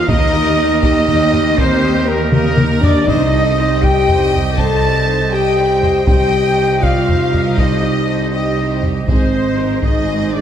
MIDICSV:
0, 0, Header, 1, 11, 480
1, 0, Start_track
1, 0, Tempo, 500000
1, 71, Time_signature, 12, 3, 24, 8
1, 9996, End_track
2, 0, Start_track
2, 0, Title_t, "Flute"
2, 0, Program_c, 0, 73
2, 77, Note_on_c, 0, 75, 98
2, 794, Note_off_c, 0, 75, 0
2, 805, Note_on_c, 0, 75, 90
2, 1517, Note_on_c, 0, 72, 96
2, 1532, Note_off_c, 0, 75, 0
2, 1997, Note_on_c, 0, 70, 77
2, 2011, Note_off_c, 0, 72, 0
2, 2229, Note_off_c, 0, 70, 0
2, 2235, Note_on_c, 0, 70, 82
2, 2703, Note_off_c, 0, 70, 0
2, 2713, Note_on_c, 0, 74, 83
2, 2944, Note_on_c, 0, 75, 85
2, 2958, Note_off_c, 0, 74, 0
2, 3670, Note_on_c, 0, 79, 88
2, 3684, Note_off_c, 0, 75, 0
2, 4138, Note_off_c, 0, 79, 0
2, 4380, Note_on_c, 0, 81, 93
2, 5110, Note_on_c, 0, 79, 86
2, 5124, Note_off_c, 0, 81, 0
2, 5830, Note_off_c, 0, 79, 0
2, 5838, Note_on_c, 0, 79, 95
2, 6559, Note_on_c, 0, 77, 79
2, 6574, Note_off_c, 0, 79, 0
2, 7264, Note_on_c, 0, 75, 80
2, 7278, Note_off_c, 0, 77, 0
2, 7985, Note_off_c, 0, 75, 0
2, 7991, Note_on_c, 0, 75, 68
2, 8461, Note_off_c, 0, 75, 0
2, 8724, Note_on_c, 0, 72, 78
2, 9454, Note_on_c, 0, 75, 68
2, 9469, Note_off_c, 0, 72, 0
2, 9916, Note_off_c, 0, 75, 0
2, 9921, Note_on_c, 0, 74, 65
2, 9996, Note_off_c, 0, 74, 0
2, 9996, End_track
3, 0, Start_track
3, 0, Title_t, "Trumpet"
3, 0, Program_c, 1, 56
3, 0, Note_on_c, 1, 77, 91
3, 82, Note_on_c, 1, 75, 103
3, 96, Note_off_c, 1, 77, 0
3, 793, Note_off_c, 1, 75, 0
3, 799, Note_on_c, 1, 75, 95
3, 1518, Note_on_c, 1, 72, 94
3, 1532, Note_off_c, 1, 75, 0
3, 2000, Note_on_c, 1, 70, 79
3, 2014, Note_off_c, 1, 72, 0
3, 2230, Note_off_c, 1, 70, 0
3, 2236, Note_on_c, 1, 70, 91
3, 2704, Note_off_c, 1, 70, 0
3, 2720, Note_on_c, 1, 74, 85
3, 2951, Note_off_c, 1, 74, 0
3, 2956, Note_on_c, 1, 75, 87
3, 3678, Note_on_c, 1, 79, 88
3, 3693, Note_off_c, 1, 75, 0
3, 4142, Note_off_c, 1, 79, 0
3, 4396, Note_on_c, 1, 81, 94
3, 5117, Note_on_c, 1, 79, 88
3, 5132, Note_off_c, 1, 81, 0
3, 5829, Note_off_c, 1, 79, 0
3, 5835, Note_on_c, 1, 79, 91
3, 6549, Note_on_c, 1, 77, 74
3, 6563, Note_off_c, 1, 79, 0
3, 7270, Note_off_c, 1, 77, 0
3, 7278, Note_on_c, 1, 75, 82
3, 7980, Note_off_c, 1, 75, 0
3, 7997, Note_on_c, 1, 75, 68
3, 8464, Note_off_c, 1, 75, 0
3, 8721, Note_on_c, 1, 72, 79
3, 9398, Note_off_c, 1, 72, 0
3, 9437, Note_on_c, 1, 75, 65
3, 9915, Note_on_c, 1, 74, 64
3, 9929, Note_off_c, 1, 75, 0
3, 9996, Note_off_c, 1, 74, 0
3, 9996, End_track
4, 0, Start_track
4, 0, Title_t, "Violin section"
4, 0, Program_c, 2, 48
4, 80, Note_on_c, 2, 75, 97
4, 781, Note_off_c, 2, 75, 0
4, 793, Note_on_c, 2, 75, 101
4, 1497, Note_off_c, 2, 75, 0
4, 1508, Note_on_c, 2, 72, 96
4, 1988, Note_on_c, 2, 70, 76
4, 1989, Note_off_c, 2, 72, 0
4, 2217, Note_off_c, 2, 70, 0
4, 2228, Note_on_c, 2, 70, 84
4, 2700, Note_off_c, 2, 70, 0
4, 2703, Note_on_c, 2, 74, 81
4, 2942, Note_off_c, 2, 74, 0
4, 2963, Note_on_c, 2, 75, 78
4, 3672, Note_on_c, 2, 79, 94
4, 3677, Note_off_c, 2, 75, 0
4, 4384, Note_on_c, 2, 81, 93
4, 4391, Note_off_c, 2, 79, 0
4, 5107, Note_off_c, 2, 81, 0
4, 5116, Note_on_c, 2, 79, 84
4, 5819, Note_off_c, 2, 79, 0
4, 5832, Note_on_c, 2, 79, 88
4, 6537, Note_off_c, 2, 79, 0
4, 6548, Note_on_c, 2, 77, 85
4, 7255, Note_off_c, 2, 77, 0
4, 7266, Note_on_c, 2, 75, 74
4, 7977, Note_off_c, 2, 75, 0
4, 7989, Note_on_c, 2, 75, 62
4, 8460, Note_off_c, 2, 75, 0
4, 8716, Note_on_c, 2, 72, 68
4, 9395, Note_off_c, 2, 72, 0
4, 9442, Note_on_c, 2, 75, 71
4, 9900, Note_on_c, 2, 74, 63
4, 9907, Note_off_c, 2, 75, 0
4, 9996, Note_off_c, 2, 74, 0
4, 9996, End_track
5, 0, Start_track
5, 0, Title_t, "Violin section"
5, 0, Program_c, 3, 48
5, 67, Note_on_c, 3, 70, 96
5, 774, Note_off_c, 3, 70, 0
5, 793, Note_on_c, 3, 67, 85
5, 1512, Note_off_c, 3, 67, 0
5, 1522, Note_on_c, 3, 67, 83
5, 2222, Note_off_c, 3, 67, 0
5, 2239, Note_on_c, 3, 70, 89
5, 2941, Note_off_c, 3, 70, 0
5, 2967, Note_on_c, 3, 72, 83
5, 3194, Note_off_c, 3, 72, 0
5, 3201, Note_on_c, 3, 69, 76
5, 3431, Note_off_c, 3, 69, 0
5, 3443, Note_on_c, 3, 67, 63
5, 3677, Note_off_c, 3, 67, 0
5, 3681, Note_on_c, 3, 75, 93
5, 4382, Note_off_c, 3, 75, 0
5, 4405, Note_on_c, 3, 72, 81
5, 4638, Note_off_c, 3, 72, 0
5, 4640, Note_on_c, 3, 74, 75
5, 4871, Note_on_c, 3, 72, 72
5, 4875, Note_off_c, 3, 74, 0
5, 5111, Note_off_c, 3, 72, 0
5, 5117, Note_on_c, 3, 75, 85
5, 5353, Note_on_c, 3, 74, 81
5, 5354, Note_off_c, 3, 75, 0
5, 5590, Note_on_c, 3, 72, 74
5, 5592, Note_off_c, 3, 74, 0
5, 5822, Note_on_c, 3, 75, 85
5, 5825, Note_off_c, 3, 72, 0
5, 6544, Note_on_c, 3, 74, 75
5, 6546, Note_off_c, 3, 75, 0
5, 6782, Note_off_c, 3, 74, 0
5, 6782, Note_on_c, 3, 72, 69
5, 7026, Note_off_c, 3, 72, 0
5, 7027, Note_on_c, 3, 70, 67
5, 7269, Note_off_c, 3, 70, 0
5, 7271, Note_on_c, 3, 69, 68
5, 7510, Note_on_c, 3, 67, 60
5, 7511, Note_off_c, 3, 69, 0
5, 7750, Note_off_c, 3, 67, 0
5, 7756, Note_on_c, 3, 69, 60
5, 7993, Note_off_c, 3, 69, 0
5, 7995, Note_on_c, 3, 67, 65
5, 8698, Note_off_c, 3, 67, 0
5, 8717, Note_on_c, 3, 68, 62
5, 8949, Note_off_c, 3, 68, 0
5, 8959, Note_on_c, 3, 72, 60
5, 9190, Note_off_c, 3, 72, 0
5, 9191, Note_on_c, 3, 70, 57
5, 9431, Note_off_c, 3, 70, 0
5, 9436, Note_on_c, 3, 68, 64
5, 9996, Note_off_c, 3, 68, 0
5, 9996, End_track
6, 0, Start_track
6, 0, Title_t, "Viola section"
6, 0, Program_c, 4, 48
6, 66, Note_on_c, 4, 63, 69
6, 71, Note_on_c, 4, 70, 70
6, 291, Note_off_c, 4, 63, 0
6, 294, Note_off_c, 4, 70, 0
6, 318, Note_on_c, 4, 67, 67
6, 318, Note_on_c, 4, 75, 65
6, 554, Note_off_c, 4, 75, 0
6, 555, Note_off_c, 4, 67, 0
6, 562, Note_on_c, 4, 63, 67
6, 563, Note_on_c, 4, 70, 70
6, 797, Note_off_c, 4, 63, 0
6, 797, Note_off_c, 4, 70, 0
6, 803, Note_on_c, 4, 67, 66
6, 807, Note_on_c, 4, 75, 69
6, 1037, Note_off_c, 4, 67, 0
6, 1039, Note_off_c, 4, 75, 0
6, 1044, Note_on_c, 4, 63, 65
6, 1044, Note_on_c, 4, 70, 64
6, 1261, Note_off_c, 4, 63, 0
6, 1261, Note_off_c, 4, 70, 0
6, 1276, Note_on_c, 4, 67, 65
6, 1280, Note_on_c, 4, 75, 65
6, 1513, Note_off_c, 4, 67, 0
6, 1515, Note_off_c, 4, 75, 0
6, 1519, Note_on_c, 4, 63, 73
6, 1519, Note_on_c, 4, 70, 72
6, 1755, Note_off_c, 4, 63, 0
6, 1755, Note_off_c, 4, 70, 0
6, 1764, Note_on_c, 4, 67, 64
6, 1765, Note_on_c, 4, 75, 68
6, 1992, Note_on_c, 4, 63, 61
6, 1997, Note_off_c, 4, 67, 0
6, 1997, Note_on_c, 4, 70, 65
6, 1998, Note_off_c, 4, 75, 0
6, 2214, Note_off_c, 4, 63, 0
6, 2217, Note_off_c, 4, 70, 0
6, 2234, Note_on_c, 4, 75, 69
6, 2235, Note_on_c, 4, 67, 68
6, 2472, Note_off_c, 4, 75, 0
6, 2473, Note_off_c, 4, 67, 0
6, 2476, Note_on_c, 4, 70, 64
6, 2479, Note_on_c, 4, 63, 62
6, 2713, Note_off_c, 4, 70, 0
6, 2715, Note_off_c, 4, 63, 0
6, 2718, Note_on_c, 4, 67, 60
6, 2719, Note_on_c, 4, 75, 64
6, 2954, Note_off_c, 4, 67, 0
6, 2955, Note_off_c, 4, 75, 0
6, 2959, Note_on_c, 4, 63, 73
6, 2960, Note_on_c, 4, 72, 71
6, 3178, Note_off_c, 4, 63, 0
6, 3179, Note_off_c, 4, 72, 0
6, 3191, Note_on_c, 4, 67, 65
6, 3192, Note_on_c, 4, 75, 67
6, 3431, Note_off_c, 4, 67, 0
6, 3431, Note_off_c, 4, 75, 0
6, 3438, Note_on_c, 4, 72, 66
6, 3445, Note_on_c, 4, 63, 71
6, 3674, Note_off_c, 4, 72, 0
6, 3678, Note_off_c, 4, 63, 0
6, 3683, Note_on_c, 4, 67, 63
6, 3684, Note_on_c, 4, 75, 64
6, 3917, Note_off_c, 4, 67, 0
6, 3917, Note_off_c, 4, 75, 0
6, 3918, Note_on_c, 4, 72, 60
6, 3919, Note_on_c, 4, 63, 60
6, 4138, Note_off_c, 4, 63, 0
6, 4138, Note_off_c, 4, 72, 0
6, 4159, Note_on_c, 4, 67, 62
6, 4164, Note_on_c, 4, 75, 61
6, 4394, Note_on_c, 4, 63, 75
6, 4395, Note_off_c, 4, 67, 0
6, 4396, Note_on_c, 4, 72, 67
6, 4397, Note_off_c, 4, 75, 0
6, 4632, Note_off_c, 4, 63, 0
6, 4633, Note_off_c, 4, 72, 0
6, 4638, Note_on_c, 4, 75, 61
6, 4640, Note_on_c, 4, 67, 65
6, 4874, Note_off_c, 4, 75, 0
6, 4875, Note_off_c, 4, 67, 0
6, 4881, Note_on_c, 4, 63, 60
6, 4882, Note_on_c, 4, 72, 63
6, 5099, Note_off_c, 4, 63, 0
6, 5100, Note_off_c, 4, 72, 0
6, 5114, Note_on_c, 4, 67, 59
6, 5118, Note_on_c, 4, 75, 63
6, 5352, Note_off_c, 4, 67, 0
6, 5354, Note_off_c, 4, 75, 0
6, 5363, Note_on_c, 4, 72, 57
6, 5367, Note_on_c, 4, 63, 58
6, 5597, Note_off_c, 4, 72, 0
6, 5599, Note_off_c, 4, 63, 0
6, 5599, Note_on_c, 4, 75, 54
6, 5603, Note_on_c, 4, 67, 56
6, 5835, Note_off_c, 4, 75, 0
6, 5837, Note_off_c, 4, 67, 0
6, 5839, Note_on_c, 4, 72, 63
6, 5842, Note_on_c, 4, 63, 58
6, 6058, Note_off_c, 4, 72, 0
6, 6060, Note_off_c, 4, 63, 0
6, 6077, Note_on_c, 4, 75, 58
6, 6079, Note_on_c, 4, 67, 58
6, 6314, Note_off_c, 4, 75, 0
6, 6315, Note_off_c, 4, 67, 0
6, 6320, Note_on_c, 4, 63, 58
6, 6324, Note_on_c, 4, 72, 62
6, 6550, Note_on_c, 4, 67, 58
6, 6554, Note_on_c, 4, 75, 58
6, 6555, Note_off_c, 4, 63, 0
6, 6557, Note_off_c, 4, 72, 0
6, 6791, Note_off_c, 4, 67, 0
6, 6792, Note_off_c, 4, 75, 0
6, 6794, Note_on_c, 4, 72, 54
6, 6797, Note_on_c, 4, 63, 57
6, 7016, Note_off_c, 4, 72, 0
6, 7017, Note_off_c, 4, 63, 0
6, 7029, Note_on_c, 4, 67, 54
6, 7031, Note_on_c, 4, 75, 53
6, 7270, Note_off_c, 4, 67, 0
6, 7271, Note_off_c, 4, 75, 0
6, 7272, Note_on_c, 4, 63, 65
6, 7280, Note_on_c, 4, 72, 62
6, 7511, Note_off_c, 4, 63, 0
6, 7516, Note_off_c, 4, 72, 0
6, 7519, Note_on_c, 4, 67, 55
6, 7520, Note_on_c, 4, 75, 55
6, 7755, Note_off_c, 4, 67, 0
6, 7756, Note_off_c, 4, 75, 0
6, 7765, Note_on_c, 4, 72, 50
6, 7771, Note_on_c, 4, 63, 51
6, 7982, Note_off_c, 4, 72, 0
6, 7985, Note_off_c, 4, 63, 0
6, 8009, Note_on_c, 4, 75, 56
6, 8014, Note_on_c, 4, 67, 53
6, 8240, Note_off_c, 4, 75, 0
6, 8242, Note_off_c, 4, 67, 0
6, 8252, Note_on_c, 4, 63, 52
6, 8253, Note_on_c, 4, 72, 51
6, 8482, Note_off_c, 4, 63, 0
6, 8482, Note_off_c, 4, 72, 0
6, 8491, Note_on_c, 4, 67, 52
6, 8496, Note_on_c, 4, 75, 47
6, 8721, Note_off_c, 4, 67, 0
6, 8723, Note_off_c, 4, 75, 0
6, 8723, Note_on_c, 4, 72, 53
6, 8725, Note_on_c, 4, 63, 54
6, 8941, Note_off_c, 4, 63, 0
6, 8941, Note_off_c, 4, 72, 0
6, 8960, Note_on_c, 4, 68, 47
6, 8965, Note_on_c, 4, 75, 48
6, 9195, Note_off_c, 4, 68, 0
6, 9198, Note_off_c, 4, 75, 0
6, 9204, Note_on_c, 4, 63, 48
6, 9209, Note_on_c, 4, 72, 53
6, 9437, Note_on_c, 4, 68, 49
6, 9438, Note_off_c, 4, 63, 0
6, 9438, Note_on_c, 4, 75, 47
6, 9440, Note_off_c, 4, 72, 0
6, 9673, Note_on_c, 4, 63, 48
6, 9674, Note_off_c, 4, 68, 0
6, 9674, Note_off_c, 4, 75, 0
6, 9678, Note_on_c, 4, 72, 45
6, 9895, Note_off_c, 4, 63, 0
6, 9898, Note_off_c, 4, 72, 0
6, 9919, Note_on_c, 4, 68, 45
6, 9921, Note_on_c, 4, 75, 45
6, 9996, Note_off_c, 4, 68, 0
6, 9996, Note_off_c, 4, 75, 0
6, 9996, End_track
7, 0, Start_track
7, 0, Title_t, "Woodwind section"
7, 0, Program_c, 5, 71
7, 68, Note_on_c, 5, 67, 96
7, 68, Note_on_c, 5, 75, 92
7, 70, Note_on_c, 5, 55, 90
7, 70, Note_on_c, 5, 70, 88
7, 2911, Note_off_c, 5, 67, 0
7, 2911, Note_off_c, 5, 75, 0
7, 2912, Note_off_c, 5, 55, 0
7, 2912, Note_off_c, 5, 70, 0
7, 2959, Note_on_c, 5, 67, 86
7, 2960, Note_on_c, 5, 75, 84
7, 2963, Note_on_c, 5, 72, 87
7, 2968, Note_on_c, 5, 55, 84
7, 5797, Note_off_c, 5, 67, 0
7, 5797, Note_off_c, 5, 75, 0
7, 5801, Note_off_c, 5, 55, 0
7, 5824, Note_off_c, 5, 72, 0
7, 5827, Note_on_c, 5, 67, 81
7, 5828, Note_on_c, 5, 75, 79
7, 5829, Note_on_c, 5, 55, 83
7, 5836, Note_on_c, 5, 72, 79
7, 8670, Note_off_c, 5, 67, 0
7, 8672, Note_off_c, 5, 55, 0
7, 8716, Note_on_c, 5, 56, 66
7, 8717, Note_on_c, 5, 63, 71
7, 9996, Note_off_c, 5, 56, 0
7, 9996, Note_off_c, 5, 63, 0
7, 9996, Note_off_c, 5, 72, 0
7, 9996, Note_off_c, 5, 75, 0
7, 9996, End_track
8, 0, Start_track
8, 0, Title_t, "French horn section"
8, 0, Program_c, 6, 60
8, 65, Note_on_c, 6, 63, 123
8, 779, Note_off_c, 6, 63, 0
8, 791, Note_on_c, 6, 63, 108
8, 1496, Note_off_c, 6, 63, 0
8, 1508, Note_on_c, 6, 60, 107
8, 1987, Note_on_c, 6, 58, 85
8, 1989, Note_off_c, 6, 60, 0
8, 2199, Note_off_c, 6, 58, 0
8, 2210, Note_on_c, 6, 58, 100
8, 2691, Note_off_c, 6, 58, 0
8, 2694, Note_on_c, 6, 62, 103
8, 2936, Note_on_c, 6, 63, 92
8, 2942, Note_off_c, 6, 62, 0
8, 3659, Note_on_c, 6, 67, 110
8, 3663, Note_off_c, 6, 63, 0
8, 4201, Note_off_c, 6, 67, 0
8, 4364, Note_on_c, 6, 69, 107
8, 5083, Note_off_c, 6, 69, 0
8, 5103, Note_on_c, 6, 67, 107
8, 5806, Note_off_c, 6, 67, 0
8, 5818, Note_on_c, 6, 67, 100
8, 6530, Note_off_c, 6, 67, 0
8, 6530, Note_on_c, 6, 65, 97
8, 7246, Note_off_c, 6, 65, 0
8, 7268, Note_on_c, 6, 63, 82
8, 7976, Note_off_c, 6, 63, 0
8, 7988, Note_on_c, 6, 63, 74
8, 8460, Note_off_c, 6, 63, 0
8, 8701, Note_on_c, 6, 60, 87
8, 9388, Note_off_c, 6, 60, 0
8, 9418, Note_on_c, 6, 63, 85
8, 9904, Note_off_c, 6, 63, 0
8, 9911, Note_on_c, 6, 62, 75
8, 9996, Note_off_c, 6, 62, 0
8, 9996, End_track
9, 0, Start_track
9, 0, Title_t, "Cello section"
9, 0, Program_c, 7, 48
9, 72, Note_on_c, 7, 39, 91
9, 2913, Note_off_c, 7, 39, 0
9, 2952, Note_on_c, 7, 36, 78
9, 5793, Note_off_c, 7, 36, 0
9, 5832, Note_on_c, 7, 36, 70
9, 8673, Note_off_c, 7, 36, 0
9, 8710, Note_on_c, 7, 44, 64
9, 9996, Note_off_c, 7, 44, 0
9, 9996, End_track
10, 0, Start_track
10, 0, Title_t, "Double bass section"
10, 0, Program_c, 8, 48
10, 75, Note_on_c, 8, 39, 86
10, 2914, Note_off_c, 8, 39, 0
10, 2953, Note_on_c, 8, 36, 86
10, 5794, Note_off_c, 8, 36, 0
10, 5841, Note_on_c, 8, 36, 75
10, 8678, Note_off_c, 8, 36, 0
10, 8710, Note_on_c, 8, 32, 70
10, 9996, Note_off_c, 8, 32, 0
10, 9996, End_track
11, 0, Start_track
11, 0, Title_t, "Taiko and cinematic ensemble drums"
11, 80, Note_on_c, 9, 41, 96
11, 176, Note_off_c, 9, 41, 0
11, 796, Note_on_c, 9, 41, 81
11, 892, Note_off_c, 9, 41, 0
11, 1038, Note_on_c, 9, 43, 65
11, 1134, Note_off_c, 9, 43, 0
11, 1281, Note_on_c, 9, 43, 51
11, 1377, Note_off_c, 9, 43, 0
11, 1518, Note_on_c, 9, 41, 81
11, 1614, Note_off_c, 9, 41, 0
11, 2236, Note_on_c, 9, 47, 94
11, 2332, Note_off_c, 9, 47, 0
11, 2470, Note_on_c, 9, 47, 98
11, 2566, Note_off_c, 9, 47, 0
11, 2719, Note_on_c, 9, 43, 94
11, 2815, Note_off_c, 9, 43, 0
11, 2956, Note_on_c, 9, 41, 93
11, 3052, Note_off_c, 9, 41, 0
11, 3679, Note_on_c, 9, 41, 78
11, 3775, Note_off_c, 9, 41, 0
11, 3922, Note_on_c, 9, 43, 64
11, 4018, Note_off_c, 9, 43, 0
11, 4158, Note_on_c, 9, 43, 49
11, 4254, Note_off_c, 9, 43, 0
11, 4392, Note_on_c, 9, 41, 82
11, 4488, Note_off_c, 9, 41, 0
11, 5596, Note_on_c, 9, 43, 46
11, 5692, Note_off_c, 9, 43, 0
11, 5830, Note_on_c, 9, 41, 97
11, 5926, Note_off_c, 9, 41, 0
11, 6556, Note_on_c, 9, 41, 74
11, 6652, Note_off_c, 9, 41, 0
11, 6801, Note_on_c, 9, 43, 57
11, 6897, Note_off_c, 9, 43, 0
11, 7047, Note_on_c, 9, 43, 49
11, 7143, Note_off_c, 9, 43, 0
11, 7277, Note_on_c, 9, 41, 79
11, 7373, Note_off_c, 9, 41, 0
11, 8478, Note_on_c, 9, 43, 45
11, 8574, Note_off_c, 9, 43, 0
11, 8718, Note_on_c, 9, 41, 89
11, 8814, Note_off_c, 9, 41, 0
11, 9433, Note_on_c, 9, 41, 73
11, 9529, Note_off_c, 9, 41, 0
11, 9996, End_track
0, 0, End_of_file